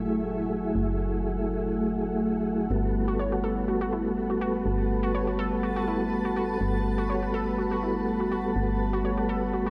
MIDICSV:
0, 0, Header, 1, 6, 480
1, 0, Start_track
1, 0, Tempo, 487805
1, 742, Time_signature, 4, 2, 24, 8
1, 9545, End_track
2, 0, Start_track
2, 0, Title_t, "Analog synth pad"
2, 0, Program_c, 0, 89
2, 0, Note_on_c, 0, 57, 76
2, 0, Note_on_c, 0, 78, 72
2, 0, Note_on_c, 0, 88, 82
2, 2623, Note_off_c, 0, 88, 0
2, 2660, Note_on_c, 0, 83, 85
2, 9545, Note_off_c, 0, 57, 0
2, 9545, Note_off_c, 0, 78, 0
2, 9545, Note_off_c, 0, 83, 0
2, 9545, End_track
3, 0, Start_track
3, 0, Title_t, "Ambient pad"
3, 0, Program_c, 1, 92
3, 0, Note_on_c, 1, 57, 83
3, 0, Note_on_c, 1, 64, 71
3, 3093, Note_on_c, 1, 71, 71
3, 3397, Note_off_c, 1, 64, 0
3, 3506, Note_on_c, 1, 81, 75
3, 4493, Note_off_c, 1, 57, 0
3, 9545, Note_off_c, 1, 71, 0
3, 9545, Note_off_c, 1, 81, 0
3, 9545, End_track
4, 0, Start_track
4, 0, Title_t, "Synth pluck"
4, 0, Program_c, 2, 84
4, 3029, Note_on_c, 2, 66, 98
4, 3126, Note_off_c, 2, 66, 0
4, 3143, Note_on_c, 2, 73, 82
4, 3215, Note_off_c, 2, 73, 0
4, 3270, Note_on_c, 2, 66, 74
4, 3308, Note_off_c, 2, 66, 0
4, 3382, Note_on_c, 2, 69, 98
4, 3455, Note_off_c, 2, 69, 0
4, 3622, Note_on_c, 2, 66, 78
4, 3695, Note_off_c, 2, 66, 0
4, 3750, Note_on_c, 2, 66, 97
4, 3846, Note_off_c, 2, 66, 0
4, 3862, Note_on_c, 2, 64, 76
4, 3935, Note_off_c, 2, 64, 0
4, 4230, Note_on_c, 2, 66, 74
4, 4268, Note_off_c, 2, 66, 0
4, 4343, Note_on_c, 2, 66, 99
4, 4415, Note_off_c, 2, 66, 0
4, 4950, Note_on_c, 2, 66, 97
4, 5046, Note_off_c, 2, 66, 0
4, 5063, Note_on_c, 2, 73, 85
4, 5135, Note_off_c, 2, 73, 0
4, 5190, Note_on_c, 2, 66, 76
4, 5228, Note_off_c, 2, 66, 0
4, 5302, Note_on_c, 2, 69, 98
4, 5375, Note_off_c, 2, 69, 0
4, 5542, Note_on_c, 2, 66, 80
4, 5615, Note_off_c, 2, 66, 0
4, 5670, Note_on_c, 2, 66, 99
4, 5766, Note_off_c, 2, 66, 0
4, 5782, Note_on_c, 2, 64, 78
4, 5855, Note_off_c, 2, 64, 0
4, 6150, Note_on_c, 2, 66, 75
4, 6188, Note_off_c, 2, 66, 0
4, 6262, Note_on_c, 2, 66, 97
4, 6335, Note_off_c, 2, 66, 0
4, 6869, Note_on_c, 2, 66, 97
4, 6966, Note_off_c, 2, 66, 0
4, 6982, Note_on_c, 2, 73, 83
4, 7055, Note_off_c, 2, 73, 0
4, 7110, Note_on_c, 2, 66, 73
4, 7148, Note_off_c, 2, 66, 0
4, 7222, Note_on_c, 2, 69, 99
4, 7295, Note_off_c, 2, 69, 0
4, 7462, Note_on_c, 2, 66, 77
4, 7535, Note_off_c, 2, 66, 0
4, 7590, Note_on_c, 2, 66, 97
4, 7686, Note_off_c, 2, 66, 0
4, 7702, Note_on_c, 2, 64, 76
4, 7775, Note_off_c, 2, 64, 0
4, 8071, Note_on_c, 2, 66, 77
4, 8109, Note_off_c, 2, 66, 0
4, 8183, Note_on_c, 2, 66, 96
4, 8255, Note_off_c, 2, 66, 0
4, 8790, Note_on_c, 2, 66, 98
4, 8886, Note_off_c, 2, 66, 0
4, 8902, Note_on_c, 2, 73, 82
4, 8975, Note_off_c, 2, 73, 0
4, 9029, Note_on_c, 2, 66, 72
4, 9068, Note_off_c, 2, 66, 0
4, 9142, Note_on_c, 2, 69, 99
4, 9215, Note_off_c, 2, 69, 0
4, 9382, Note_on_c, 2, 66, 78
4, 9455, Note_off_c, 2, 66, 0
4, 9509, Note_on_c, 2, 66, 97
4, 9545, Note_off_c, 2, 66, 0
4, 9545, End_track
5, 0, Start_track
5, 0, Title_t, "Tonewheel organ"
5, 0, Program_c, 3, 16
5, 0, Note_on_c, 3, 54, 71
5, 0, Note_on_c, 3, 57, 65
5, 0, Note_on_c, 3, 64, 66
5, 0, Note_on_c, 3, 68, 79
5, 2630, Note_off_c, 3, 54, 0
5, 2633, Note_off_c, 3, 57, 0
5, 2637, Note_off_c, 3, 64, 0
5, 2640, Note_off_c, 3, 68, 0
5, 2651, Note_on_c, 3, 55, 74
5, 2658, Note_on_c, 3, 59, 67
5, 2665, Note_on_c, 3, 66, 66
5, 2672, Note_on_c, 3, 69, 80
5, 6470, Note_off_c, 3, 55, 0
5, 6473, Note_off_c, 3, 59, 0
5, 6477, Note_off_c, 3, 66, 0
5, 6480, Note_off_c, 3, 69, 0
5, 6492, Note_on_c, 3, 55, 74
5, 6499, Note_on_c, 3, 59, 68
5, 6506, Note_on_c, 3, 66, 69
5, 6513, Note_on_c, 3, 69, 82
5, 9545, Note_off_c, 3, 55, 0
5, 9545, Note_off_c, 3, 59, 0
5, 9545, Note_off_c, 3, 66, 0
5, 9545, Note_off_c, 3, 69, 0
5, 9545, End_track
6, 0, Start_track
6, 0, Title_t, "FM bass"
6, 0, Program_c, 4, 39
6, 0, Note_on_c, 4, 30, 84
6, 719, Note_off_c, 4, 30, 0
6, 742, Note_on_c, 4, 30, 84
6, 2639, Note_off_c, 4, 30, 0
6, 2662, Note_on_c, 4, 31, 85
6, 4560, Note_off_c, 4, 31, 0
6, 4582, Note_on_c, 4, 31, 86
6, 6479, Note_off_c, 4, 31, 0
6, 6502, Note_on_c, 4, 31, 87
6, 8400, Note_off_c, 4, 31, 0
6, 8422, Note_on_c, 4, 31, 87
6, 9545, Note_off_c, 4, 31, 0
6, 9545, End_track
0, 0, End_of_file